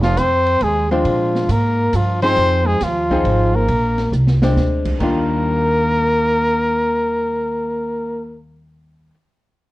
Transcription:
Already playing: F1
0.02 F3 F4, snare
0.17 F2 C4 C5, kick, hi-hat pedal, ride
0.47 ride
0.61 D#2 G#3 G#4, kick, ride
0.90 F3 G#3 C4 D4 F4
1.04 A#2, kick, ride
1.35 snare
1.48 G#2 A#3 A#4, kick, hi-hat pedal, ride
1.93 G2 F3 F4, kick, hi-hat pedal, ride
2.22 F3 C4 D#4 G#4 C5, ride
2.37 F2, kick, ride
2.67 G#3 G#4
2.81 D#2 F3 F4, kick, snare, hi-hat pedal, ride
3.10 F3 C4 D#4 G#4, kick
3.24 G#1, kick, ride
3.55 A#3 A#4
3.68 A#1, kick, ride
3.98 snare, ride
4.12 C2, hi-hat pedal
4.27 snare
4.42 G#3 C4 D4, snare
4.56 D2, snare
4.85 kick, crash
5.00 D#2 D#3 G3 A#3 D4 F4 A#4, kick, crash

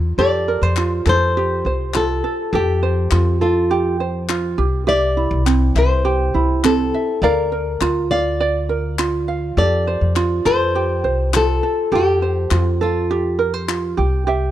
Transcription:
Already playing: E2 F4 A#4 D5
0.18 F2 G4 A4 D5
0.48 A#4
0.62 F2 C5
0.76 F4, clap
1.06 F2 A4 C5, clap
1.37 G4
1.65 C2 C5
1.94 F4 A4, clap
2.24 A4
2.53 F2 G4 A4
2.83 C5
3.11 F2 F4, clap
3.41 F4 A4
3.71 G4
4.00 C5
4.29 F4, clap
4.58 C2 G4
4.87 G4 D5 E5
5.17 E4
5.31 C2
5.46 C4, clap
5.75 C2 C5 E5, clap
6.05 G4
6.34 C2 E4
6.64 C4 A4, clap
6.94 E5
7.22 D2 A#4 D5 F5
7.52 A#4
7.81 D2 F4, clap
8.11 D5 F5
8.40 D5
8.69 A#4
8.99 F4, clap
9.28 F5
9.57 F2 G4 A4 D5
9.87 C5
10.01 F2
10.16 F4, clap
10.45 F2 A4 C5, clap
10.75 G4
11.04 C2 C5
11.33 F4 A4, clap
11.63 A4
11.92 F2 G4 A4
12.22 C5
12.51 F2 F4, clap
12.59 F4
12.81 F4 A4
13.11 G4
13.39 A#4
13.54 C5
13.68 F4, clap
13.97 C2 G4
14.27 G4 E5

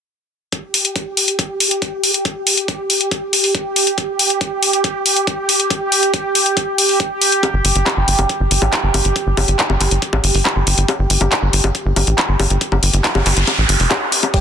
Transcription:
0.52 G4, kick, closed hi-hat
0.74 open hi-hat
0.85 closed hi-hat
0.96 kick, closed hi-hat
1.17 open hi-hat
1.28 closed hi-hat
1.39 kick, closed hi-hat
1.60 open hi-hat
1.71 closed hi-hat
1.82 kick, closed hi-hat
2.04 open hi-hat
2.14 closed hi-hat
2.25 kick, closed hi-hat
2.47 open hi-hat
2.57 closed hi-hat
2.68 kick, closed hi-hat
2.90 open hi-hat
3.01 closed hi-hat
3.11 kick, closed hi-hat
3.33 open hi-hat
3.44 open hi-hat
3.55 kick, closed hi-hat
3.76 open hi-hat
3.87 closed hi-hat
3.98 kick, closed hi-hat
4.19 open hi-hat
4.30 closed hi-hat
4.41 kick, closed hi-hat
4.63 open hi-hat
4.73 closed hi-hat
4.84 kick, closed hi-hat
5.06 open hi-hat
5.16 closed hi-hat
5.27 kick, closed hi-hat
5.49 open hi-hat
5.60 closed hi-hat
5.70 kick, closed hi-hat
5.92 open hi-hat
6.03 closed hi-hat
6.14 kick, closed hi-hat
6.35 open hi-hat
6.46 closed hi-hat
6.57 kick, closed hi-hat
6.78 open hi-hat
6.89 open hi-hat
7.00 kick, closed hi-hat
7.22 open hi-hat
7.32 closed hi-hat
7.43 kick, closed hi-hat, high bongo
7.54 G1
7.65 G1, open hi-hat
7.75 G1, closed hi-hat
7.86 kick, clap, closed hi-hat, high bongo
7.97 G1
8.08 G1, open hi-hat
8.19 G1, closed hi-hat, high bongo
8.29 kick, closed hi-hat
8.40 G1
8.51 G1, open hi-hat
8.62 A1, closed hi-hat, high bongo
8.73 kick, clap, closed hi-hat
8.83 G1
8.94 G1, open hi-hat, high bongo
9.05 G1, closed hi-hat
9.16 kick, closed hi-hat
9.27 G1
9.37 G1, open hi-hat, high bongo
9.48 G1, closed hi-hat
9.59 kick, clap, closed hi-hat
9.70 G1, high bongo
9.81 G1, clap, open hi-hat
9.91 G1, closed hi-hat
10.02 kick, closed hi-hat
10.13 A1, high bongo
10.24 G1, open hi-hat
10.35 G1, open hi-hat
10.45 kick, clap, closed hi-hat, high bongo
10.56 G1
10.67 G1, open hi-hat
10.78 G1, closed hi-hat
10.88 kick, closed hi-hat, high bongo
10.99 G1
11.10 G1, open hi-hat
11.21 G1, closed hi-hat, high bongo
11.32 kick, clap, closed hi-hat
11.42 G1
11.53 G1, open hi-hat
11.64 G1, closed hi-hat, high bongo
11.75 kick, closed hi-hat
11.86 G1
11.96 G1, open hi-hat, high bongo
12.07 A1, closed hi-hat
12.18 kick, clap, closed hi-hat
12.29 G1
12.40 G1, open hi-hat, high bongo
12.50 G1, closed hi-hat
12.61 kick, closed hi-hat, noise sweep
12.72 G1, high bongo
12.83 G1, open hi-hat
12.94 G1, closed hi-hat
13.04 kick, clap, closed hi-hat
13.15 G1, high bongo
13.26 G1, clap, open hi-hat
13.37 G1, closed hi-hat
13.47 kick, closed hi-hat, high bongo
13.58 A1
13.69 G1, open hi-hat
13.80 F1, open hi-hat
13.91 clap, closed hi-hat, high bongo
14.12 open hi-hat
14.23 closed hi-hat, high bongo
14.34 G3 G4, kick, closed hi-hat, crash, high bongo

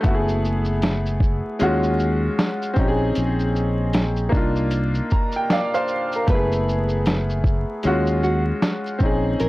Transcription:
0.01 A3 B3, kick, closed hi-hat, shaker
0.05 F#1 E4 F#4
0.15 G#4
0.28 shaker
0.45 shaker
0.65 shaker
0.82 snare, closed hi-hat, shaker
1.06 shaker
1.20 kick, shaker
1.59 D#2 G#3 C#4 F4 F#4, closed hi-hat, shaker
1.83 shaker
1.99 shaker
2.39 snare, closed hi-hat, shaker
2.62 shaker
2.74 A#1 C4 C#4, kick, shaker
2.79 D#4 G4
2.88 G#4
3.15 A#1, closed hi-hat, shaker
3.39 shaker
3.56 shaker
3.93 snare, closed hi-hat, shaker
4.17 shaker
4.29 C2 A#3 D4, kick
4.33 D#4 F4, shaker
4.56 shaker
4.71 closed hi-hat, shaker
4.94 shaker
5.11 A#5, kick, shaker
5.32 shaker
5.36 G5
5.50 D5 F5, snare, closed hi-hat, shaker
5.74 C5 F5, shaker
5.88 shaker
6.12 A#4, shaker
6.27 F#1 A3 B3 B4, kick, closed hi-hat, shaker
6.32 E4 G#4
6.52 shaker
6.69 shaker
6.89 shaker
7.06 snare, closed hi-hat, shaker
7.30 shaker
7.44 kick, shaker
7.83 D#2 G#3 C#4 F4 F#4, closed hi-hat, shaker
8.07 shaker
8.23 F#4, shaker
8.62 snare, closed hi-hat, shaker
8.86 shaker
8.98 A#1 C4 C#4, kick, shaker
9.03 D#4 G#4
9.40 A#1 A#4, closed hi-hat, shaker

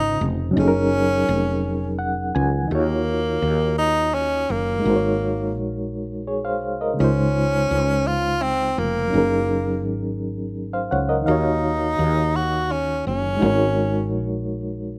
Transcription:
Already playing: G#1 C#3 C#4 D#4 F4 C5
0.21 F1
0.51 F#3 C#4
0.56 F#1 C#4 D#4 G#4
0.61 A4
0.68 A#4
1.29 F1
1.99 F#5
2.35 C#2 G#5
2.65 D#3 D#4
2.70 D#2 A#3 F4 F#4
2.75 C#5
3.42 D#2
3.78 D#4
4.14 C#4
4.50 F#1 A#3
4.79 G#3 D#4
4.84 G#1 F#4 A#4
4.89 C5
4.96 C#5
5.57 A#1
6.27 G#4 C#5
6.45 C5 F5
6.65 C2
6.81 A#4 D#5
6.94 C#3 G#3
6.99 C#2 C#4 D#4 F4
7.04 C5
7.71 C#2
8.07 F4
8.42 C4
8.78 F1 A#3
9.07 F#3 C#4
9.13 F#1 D#4 G#4
9.18 A#4
9.86 G#1
10.73 C5 F5
10.91 C#2 C#5 F#5
11.09 A#4 D#5
11.21 D#3 D#4
11.26 D#2 D#4 F#4 F5
11.31 C#5
11.99 D#2
12.36 F#4
12.72 C#4
13.07 F#1 C#4
13.37 G#3 D#4
13.41 G#1 F#4 A#4
13.46 C#5
14.14 A#1

